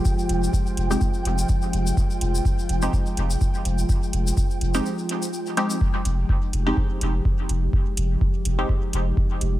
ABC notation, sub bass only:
X:1
M:4/4
L:1/8
Q:"Swing 16ths" 1/4=125
K:Fm
V:1 name="Sub bass" clef=bass
z F,,, z F,,, z F,,, z F,,, | z F,,, z F,,, z F,,, z F,,, | z F,,, z F,,, z4 | z F,,, z F,,, z F,,, z F,,, |
z F,,, z F,,, z F,,, z F,,, |]